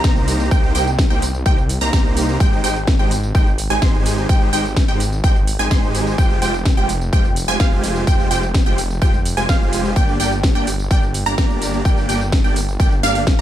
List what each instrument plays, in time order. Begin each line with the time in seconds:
0.04 detuned saw bass C2, supersaw synth A#3 D#4 G4 C5 A#5, synth pluck A#5, kick, snare, tambourine
0.16 tambourine
0.28 open hi-hat, tambourine
0.40 tambourine
0.51 detuned saw bass C2, supersaw synth A#3 D#4 G4 C5 G5, synth pluck G5, kick, tambourine
0.64 tambourine
0.75 detuned saw bass C2, supersaw synth A#3 D#4 G4 C5 G5, synth pluck G5, open hi-hat, tambourine
0.87 tambourine
0.99 kick, snare, tambourine
1.10 detuned saw bass C2, supersaw synth A#3 D#4 G4 C5 G5, synth pluck G5, tambourine
1.22 open hi-hat, tambourine
1.35 tambourine
1.46 detuned saw bass C2, supersaw synth A#3 D#4 G4 C5 G5, synth pluck G5, kick, tambourine
1.58 tambourine
1.69 open hi-hat, tambourine
1.81 detuned saw bass C2, supersaw synth A#3 D#4 G4 C5 A#5, synth pluck A#5, open hi-hat, tambourine
1.93 detuned saw bass C2, supersaw synth A#3 D#4 G4 C5 A#5, synth pluck A#5, kick, snare, tambourine
2.05 tambourine
2.17 open hi-hat, tambourine
2.29 tambourine
2.40 detuned saw bass G#1, supersaw synth G#3 D#4 G4 C5 G5, synth pluck G5, kick, tambourine
2.53 tambourine
2.64 detuned saw bass G#1, supersaw synth G#3 D#4 G4 C5 G5, synth pluck G5, open hi-hat, tambourine
2.76 tambourine
2.87 kick, snare, tambourine
2.99 detuned saw bass G#1, supersaw synth G#3 D#4 G4 C5 G5, synth pluck G5, tambourine
3.11 open hi-hat, tambourine
3.23 tambourine
3.35 detuned saw bass G#1, supersaw synth G#3 D#4 G4 C5 G5, synth pluck G5, kick, tambourine
3.47 tambourine
3.58 open hi-hat, tambourine
3.70 detuned saw bass G#1, supersaw synth G#3 D#4 G4 C5 G#5, synth pluck G#5, open hi-hat, tambourine
3.82 detuned saw bass G#1, supersaw synth G#3 D#4 G4 C5 G#5, synth pluck C6, kick, snare, tambourine
3.94 tambourine
4.06 open hi-hat, tambourine
4.18 tambourine
4.29 detuned saw bass G#1, supersaw synth G#3 D#4 G4 C5 G5, synth pluck G5, kick, tambourine
4.42 tambourine
4.53 detuned saw bass G#1, supersaw synth G#3 D#4 G4 C5 G5, synth pluck G5, open hi-hat, tambourine
4.65 tambourine
4.76 kick, snare, tambourine
4.88 detuned saw bass G#1, supersaw synth G#3 D#4 G4 C5 G5, synth pluck G5, tambourine
5.00 open hi-hat, tambourine
5.13 tambourine
5.24 detuned saw bass G#1, supersaw synth G#3 D#4 G4 C5 G5, synth pluck G5, kick, tambourine
5.36 tambourine
5.47 open hi-hat, tambourine
5.59 detuned saw bass G#1, supersaw synth G#3 D#4 G4 C5 G#5, synth pluck G#5, open hi-hat, tambourine
5.71 detuned saw bass G#1, supersaw synth G#3 D#4 G4 C5 G#5, synth pluck C6, kick, snare, tambourine
5.83 tambourine
5.95 open hi-hat, tambourine
6.07 tambourine
6.18 detuned saw bass F1, supersaw synth G#3 F4 G4 C5 G5, synth pluck G5, kick, tambourine
6.31 tambourine
6.42 detuned saw bass F1, supersaw synth G#3 F4 G4 C5 G5, synth pluck G5, open hi-hat, tambourine
6.54 tambourine
6.65 kick, snare, tambourine
6.77 detuned saw bass F1, supersaw synth G#3 F4 G4 C5 G5, synth pluck G5, tambourine
6.89 open hi-hat, tambourine
7.01 tambourine
7.13 detuned saw bass F1, supersaw synth G#3 F4 G4 C5 G5, synth pluck G5, kick, tambourine
7.25 tambourine
7.36 open hi-hat, tambourine
7.48 detuned saw bass F1, supersaw synth G#3 F4 G4 C5 G#5, synth pluck G#5, open hi-hat, tambourine
7.60 detuned saw bass F1, supersaw synth G#3 F4 G4 C5 G#5, synth pluck F5, kick, snare, tambourine
7.72 tambourine
7.84 open hi-hat, tambourine
7.96 tambourine
8.07 detuned saw bass F1, supersaw synth G#3 F4 G4 C5 G5, synth pluck G5, kick, tambourine
8.19 tambourine
8.31 detuned saw bass F1, supersaw synth G#3 F4 G4 C5 G5, synth pluck G5, open hi-hat, tambourine
8.43 tambourine
8.54 kick, snare, tambourine
8.66 detuned saw bass F1, supersaw synth G#3 F4 G4 C5 G5, synth pluck G5, tambourine
8.78 open hi-hat, tambourine
8.90 tambourine
9.02 detuned saw bass F1, supersaw synth G#3 F4 G4 C5 G5, synth pluck G5, kick, tambourine
9.14 tambourine
9.25 open hi-hat, tambourine
9.37 detuned saw bass F1, supersaw synth G#3 F4 G4 C5 G#5, synth pluck G#5, open hi-hat, tambourine
9.49 detuned saw bass F1, supersaw synth G#3 F4 G4 C5 G#5, synth pluck F5, kick, snare, tambourine
9.61 tambourine
9.73 open hi-hat, tambourine
9.85 tambourine
9.96 detuned saw bass G1, supersaw synth A#3 D4 G4 D5 G5, synth pluck G5, kick, tambourine
10.09 tambourine
10.20 detuned saw bass G1, supersaw synth A#3 D4 G4 D5 G5, synth pluck G5, open hi-hat, tambourine
10.32 tambourine
10.43 kick, snare, tambourine
10.55 detuned saw bass G1, supersaw synth A#3 D4 G4 D5 G5, synth pluck G5, tambourine
10.67 open hi-hat, tambourine
10.79 tambourine
10.91 detuned saw bass G1, supersaw synth A#3 D4 G4 D5 G5, synth pluck G5, kick, tambourine
11.03 tambourine
11.14 open hi-hat, tambourine
11.26 detuned saw bass G1, supersaw synth A#3 D4 G4 D5 A#5, synth pluck A#5, open hi-hat, tambourine
11.38 detuned saw bass G1, supersaw synth A#3 D4 G4 D5 A#5, synth pluck A#5, kick, snare, tambourine
11.50 tambourine
11.62 open hi-hat, tambourine
11.74 tambourine
11.85 detuned saw bass G1, supersaw synth A#3 D4 G4 D5 G5, synth pluck G5, kick, tambourine
11.98 tambourine
12.09 detuned saw bass G1, supersaw synth A#3 D4 G4 D5 G5, synth pluck G5, open hi-hat, tambourine
12.21 tambourine
12.32 kick, snare, tambourine
12.44 detuned saw bass G1, supersaw synth A#3 D4 G4 D5 G5, synth pluck G5, tambourine
12.56 open hi-hat, tambourine
12.68 tambourine
12.80 detuned saw bass G1, supersaw synth A#3 D4 G4 D5 G5, synth pluck G5, kick, tambourine
12.92 tambourine
13.03 detuned saw bass G1, supersaw synth A#3 D4 G4 D5 F5, synth pluck F5, snare, open hi-hat, tambourine
13.15 open hi-hat, tambourine
13.27 kick, snare, tambourine